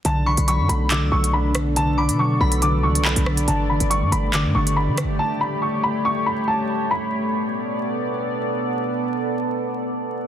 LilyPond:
<<
  \new Staff \with { instrumentName = "Synth bell" } { \time 4/4 \key b \minor \tempo 4 = 140 r8 cis'''8 b''4 e'''4 r4 | r8 d'''4 b''8 r2 | r1 | r1 |
r1 | r1 | }
  \new Staff \with { instrumentName = "Upright piano" } { \time 4/4 \key b \minor a''8 b''8 cis'''8 b''8 d'''8 cis'''8 b''8 r8 | a''8 b''8 cis'''8 b''8 d'''8 cis'''8 b''4 | a''8 b''8 cis'''8 b''8 d'''8 cis'''8 b''8 r8 | a''8 b''8 cis'''8 b''8 cis'''8 b''8 a''4 |
b''2. r4 | r1 | }
  \new Staff \with { instrumentName = "Ambient pad" } { \time 4/4 \key b \minor << { d''1~ | d''1~ | d''1 | cis''1 |
<b a' d''>1~ | <b a' d''>1 | } \\ { <b a'>1~ | <b a'>1 | <a g'>1~ | <a g'>1 |
r1 | r1 | } >> }
  \new Staff \with { instrumentName = "Harp" } { \clef bass \time 4/4 \key b \minor d8 d8 fis8 a8 d8 d8 d'8 d8 | d8 d8 fis8 a8 d8 d4 d8 | d8 d8 g8 a8 d8 d8 d''8 d8 | r1 |
r1 | r1 | }
  \new Staff \with { instrumentName = "808-style bass" } { \clef bass \time 4/4 \key b \minor b,,8. b,,8 fis,16 b,,8. cis,16 b,,4.~ | b,,8. b,8. b,,4 cis,16. b,,16. b,,8. | g,,8. g,,8 g,16 g,,8. g,16 g,,8. d16. g,,16. | r1 |
r1 | r1 | }
  \new DrumStaff \with { instrumentName = "Drums" } \drummode { \time 4/4 hh8. hh16 hh8 hh8 <hc hh>8. hh16 r8 <hh ss>8 | hh8. hh16 r8. hh16 hh8. hh16 hc16 hh16 ss16 hh16 | hh8. hh16 hh8 hh8 <hc hh>8. hh16 r8 <hh ss>8 | r4 r4 r4 r4 |
r4 r4 r4 r4 | r4 r4 r4 r4 | }
>>